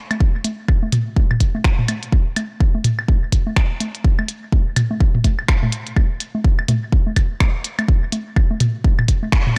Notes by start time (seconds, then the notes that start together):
0.11 closed hi-hat, high conga, high woodblock
0.20 kick
0.44 closed hi-hat, high conga
0.68 kick, high woodblock
0.83 high conga
0.92 closed hi-hat, mid tom
1.16 kick, high conga
1.31 mid tom, high woodblock
1.40 kick, closed hi-hat
1.55 high conga
1.64 finger snap, kick
1.79 mid tom
1.88 closed hi-hat, high conga, high woodblock
2.03 closed hi-hat
2.12 kick
2.36 closed hi-hat, high conga, high woodblock
2.60 kick
2.75 high conga
2.84 closed hi-hat, mid tom
2.99 high woodblock
3.08 kick, high conga
3.32 kick, closed hi-hat
3.47 high conga
3.56 finger snap, kick, high woodblock
3.80 closed hi-hat, high conga
3.95 closed hi-hat
4.04 kick
4.19 high conga, high woodblock
4.28 closed hi-hat
4.52 kick, high conga
4.76 closed hi-hat, mid tom, high woodblock
4.91 high conga
5.00 kick
5.15 mid tom
5.24 kick, closed hi-hat, high conga
5.39 high woodblock
5.48 finger snap, kick
5.63 mid tom, high conga
5.72 closed hi-hat
5.87 closed hi-hat
5.96 kick, high conga, high woodblock
6.20 closed hi-hat
6.35 high conga
6.44 kick
6.59 high woodblock
6.68 closed hi-hat, mid tom, high conga
6.92 kick
7.07 high conga
7.16 kick, closed hi-hat, high woodblock
7.40 finger snap, kick, high conga
7.64 closed hi-hat
7.79 closed hi-hat, high conga, high woodblock
7.88 kick
8.12 closed hi-hat, high conga
8.36 kick, high woodblock
8.51 high conga
8.60 closed hi-hat, mid tom
8.84 kick, high conga
8.99 mid tom, high woodblock
9.08 kick, closed hi-hat
9.23 high conga
9.32 finger snap, kick
9.47 mid tom